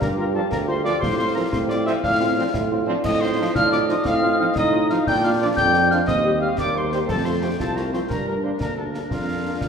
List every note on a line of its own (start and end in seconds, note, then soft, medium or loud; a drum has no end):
0.00 0.43 G2 medium
0.00 2.00 G4 medium
0.00 1.04 G4 loud
0.00 0.09 A#4 loud
0.00 0.98 F5 medium
0.00 0.07 A#5 medium
0.00 concert bass drum medium
0.00 snare medium
0.17 0.24 A#3 medium
0.17 0.24 D4 medium
0.17 0.24 F4 medium
0.17 0.26 A#4 loud
0.17 0.25 A#5 medium
0.34 0.40 F3 medium
0.34 0.40 A#3 medium
0.34 0.40 D4 medium
0.34 0.41 F4 medium
0.34 0.43 A4 medium
0.34 0.50 A5 medium
0.51 0.94 D2 medium
0.51 0.59 A#4 loud
0.51 0.58 A#5 loud
0.51 concert bass drum medium
0.51 snare medium
0.67 0.74 A#3 medium
0.67 0.74 D4 medium
0.67 0.74 F4 medium
0.67 0.75 C5 loud
0.67 0.84 C6 medium
0.84 0.91 F3 medium
0.84 0.91 A#3 medium
0.84 0.91 D4 medium
0.84 0.91 F4 medium
0.84 1.02 D5 loud
0.84 1.00 D6 medium
0.84 snare medium
1.00 1.44 A2 medium
1.00 1.35 F4 medium
1.00 1.17 C5 loud
1.00 2.88 F5 medium
1.00 1.17 C6 loud
1.00 concert bass drum medium
1.00 snare medium
1.18 1.25 C4 medium
1.18 1.25 F4 medium
1.18 1.34 C5 loud
1.18 1.34 C6 loud
1.35 1.42 F3 medium
1.35 1.41 C4 medium
1.35 1.42 C4 medium
1.35 1.41 F4 medium
1.35 1.43 A#4 loud
1.35 1.41 A#5 medium
1.52 1.95 A2 medium
1.52 2.00 C4 medium
1.52 1.60 C5 loud
1.52 1.58 C6 loud
1.52 concert bass drum medium
1.52 snare medium
1.69 1.76 C4 medium
1.69 1.76 F4 medium
1.69 1.85 D5 loud
1.69 1.75 D6 loud
1.69 snare medium
1.86 1.92 F3 loud
1.86 1.92 C4 medium
1.86 1.92 F4 medium
1.86 1.94 E5 loud
1.86 1.92 E6 loud
1.86 snare medium
2.03 2.46 A2 medium
2.03 2.11 D4 medium
2.03 2.88 F4 medium
2.03 2.50 F5 loud
2.03 2.51 F6 loud
2.03 concert bass drum medium
2.03 snare medium
2.20 2.26 C4 medium
2.20 2.39 C4 medium
2.20 2.26 F4 medium
2.37 2.43 F3 medium
2.37 2.43 C4 medium
2.37 2.44 C4 medium
2.37 2.52 D4 medium
2.37 2.43 F4 medium
2.53 2.96 A2 medium
2.53 2.61 E4 loud
2.53 concert bass drum medium
2.53 snare medium
2.70 2.77 C4 medium
2.70 2.86 F4 medium
2.70 2.77 F4 medium
2.86 2.93 F3 medium
2.86 2.93 C4 medium
2.86 2.94 C4 medium
2.86 3.06 D4 loud
2.86 2.94 F4 medium
3.04 3.47 A2 medium
3.04 3.55 C4 medium
3.04 5.03 F4 medium
3.04 3.20 D#5 loud
3.04 5.07 D#5 loud
3.04 3.22 D#6 loud
3.04 concert bass drum medium
3.04 snare medium
3.04 crash medium
3.21 3.27 C4 medium
3.21 3.27 D#4 medium
3.21 3.27 F4 medium
3.21 3.53 C5 loud
3.21 3.54 C6 loud
3.37 3.44 F3 medium
3.37 3.44 C4 medium
3.37 3.44 D#4 medium
3.37 3.43 F4 medium
3.55 3.97 A2 medium
3.55 4.08 D4 loud
3.55 3.63 F5 loud
3.55 3.71 F6 loud
3.55 concert bass drum medium
3.55 snare medium
3.71 3.77 C4 medium
3.71 3.77 D#4 medium
3.71 3.77 F4 medium
3.71 3.79 D5 loud
3.71 3.78 D6 loud
3.71 snare medium
3.87 3.94 F3 medium
3.87 3.95 C4 medium
3.87 3.94 D#4 medium
3.87 3.95 D#4 medium
3.87 3.95 F4 medium
3.87 3.96 D#5 loud
3.87 4.05 D#6 medium
3.87 snare medium
4.05 4.48 A2 medium
4.05 4.56 C4 medium
4.05 4.37 F5 loud
4.05 4.37 F6 loud
4.05 concert bass drum medium
4.05 snare medium
4.22 4.29 C4 medium
4.22 4.28 D#4 medium
4.22 4.29 F4 medium
4.39 4.45 F3 medium
4.39 4.46 C4 medium
4.39 4.45 D#4 medium
4.39 4.46 D#4 medium
4.39 4.46 F4 medium
4.39 4.55 F5 loud
4.39 4.46 F6 medium
4.55 4.99 A2 medium
4.55 5.03 D#4 loud
4.55 4.92 D#5 loud
4.55 4.87 D#6 loud
4.55 concert bass drum medium
4.55 snare medium
4.73 4.79 C4 medium
4.73 4.79 D#4 medium
4.73 4.79 F4 medium
4.90 4.96 F3 medium
4.90 4.96 C4 medium
4.90 4.96 D#4 medium
4.90 4.96 F4 medium
4.90 5.07 F5 loud
4.90 4.96 F6 medium
4.90 snare medium
5.07 5.49 A#2 medium
5.07 6.09 D4 loud
5.07 6.04 F4 medium
5.07 6.04 D5 medium
5.07 5.23 G5 loud
5.07 5.23 G6 loud
5.07 concert bass drum medium
5.07 snare medium
5.23 5.29 A#3 medium
5.23 5.29 D4 medium
5.23 5.29 F4 medium
5.23 5.32 F5 loud
5.23 5.30 F6 loud
5.40 5.47 F3 medium
5.40 5.46 A#3 medium
5.40 5.47 D4 medium
5.40 5.46 F4 medium
5.40 5.49 D5 loud
5.40 5.46 D6 medium
5.56 6.00 F2 medium
5.56 5.92 G5 loud
5.56 5.88 G6 loud
5.56 concert bass drum medium
5.56 snare medium
5.74 5.80 A#3 medium
5.74 5.80 D4 medium
5.74 5.80 F4 medium
5.74 snare medium
5.91 5.98 F3 medium
5.91 5.97 A#3 medium
5.91 5.97 D4 medium
5.91 5.98 D4 medium
5.91 5.97 F4 medium
5.91 6.06 F5 medium
5.91 5.97 F6 medium
5.91 snare medium
6.06 6.47 D#2 medium
6.06 6.58 C4 medium
6.06 7.09 G4 medium
6.06 8.10 C5 medium
6.06 6.42 D#5 loud
6.06 6.39 D#6 loud
6.06 concert bass drum medium
6.06 snare medium
6.24 6.31 G3 medium
6.24 6.31 C4 medium
6.24 6.31 G4 medium
6.40 6.47 G3 medium
6.40 6.48 G3 medium
6.40 6.48 C4 medium
6.40 6.47 G4 medium
6.40 6.59 F5 loud
6.40 6.48 F6 medium
6.58 7.01 D#2 medium
6.58 7.05 A#3 medium
6.58 6.77 D5 loud
6.58 6.79 D6 loud
6.58 concert bass drum medium
6.58 snare medium
6.75 6.81 G3 medium
6.75 6.81 C4 medium
6.75 6.81 G4 medium
6.75 6.91 C5 loud
6.75 6.93 C6 medium
6.92 6.98 G3 medium
6.92 6.98 C4 medium
6.92 6.99 C4 medium
6.92 6.98 G4 medium
6.92 6.99 C5 medium
6.92 6.99 C6 medium
6.92 snare medium
7.08 7.51 F2 medium
7.08 7.56 A3 medium
7.08 8.06 F4 medium
7.08 7.16 A4 loud
7.08 7.27 A5 medium
7.08 concert bass drum medium
7.08 snare medium
7.08 crash soft
7.25 7.32 A3 medium
7.25 7.32 C4 medium
7.25 7.32 F4 medium
7.25 7.33 C5 medium
7.25 7.44 C6 medium
7.42 7.48 F3 medium
7.42 7.49 A3 medium
7.42 7.48 C4 medium
7.42 7.49 C4 medium
7.42 7.49 F4 medium
7.42 7.50 G4 medium
7.42 7.59 G5 medium
7.59 8.02 C2 medium
7.59 7.90 F4 medium
7.59 7.79 A4 medium
7.59 7.78 A5 medium
7.59 concert bass drum medium
7.59 snare medium
7.76 7.83 A3 medium
7.76 7.83 C4 medium
7.76 7.83 F4 medium
7.76 7.93 A#4 medium
7.76 7.93 A#5 medium
7.76 snare medium
7.93 7.99 F3 medium
7.93 7.99 A3 medium
7.93 7.99 C4 medium
7.93 8.00 C4 medium
7.93 7.99 F4 medium
7.93 8.01 C5 medium
7.93 8.00 C6 medium
7.93 snare medium
8.10 8.52 G2 medium
8.10 9.68 D4 medium
8.10 8.62 D4 medium
8.10 8.17 A#4 medium
8.10 9.68 A#4 medium
8.10 8.26 A#5 medium
8.10 concert bass drum medium
8.10 snare medium
8.26 8.34 G3 medium
8.26 8.33 A#3 medium
8.26 8.34 D4 medium
8.26 8.42 A#4 medium
8.26 8.35 A#5 medium
8.43 8.50 G3 medium
8.43 8.50 A#3 medium
8.43 8.50 D4 medium
8.43 8.50 C5 medium
8.43 8.50 C6 medium
8.59 9.03 D2 medium
8.59 9.12 A#3 medium
8.59 8.75 A#4 medium
8.59 8.77 A#5 medium
8.59 concert bass drum medium
8.59 snare medium
8.75 8.84 G3 medium
8.75 8.84 A#3 soft
8.75 8.84 D4 medium
8.75 8.83 A4 medium
8.75 8.84 A5 medium
8.93 9.01 G3 soft
8.93 9.00 A#3 medium
8.93 9.00 D4 medium
8.93 9.01 D4 medium
8.93 9.01 A#4 medium
8.93 9.00 A#5 medium
8.93 snare medium
9.10 9.53 F2 medium
9.10 9.68 D4 medium
9.10 9.68 F4 medium
9.10 9.68 F5 medium
9.10 concert bass drum medium
9.10 snare medium
9.28 9.34 A#3 medium
9.28 9.34 D4 medium
9.44 9.50 A#3 medium
9.44 9.51 A#3 soft
9.44 9.51 D4 medium
9.61 9.68 F2 medium
9.61 concert bass drum medium
9.61 snare medium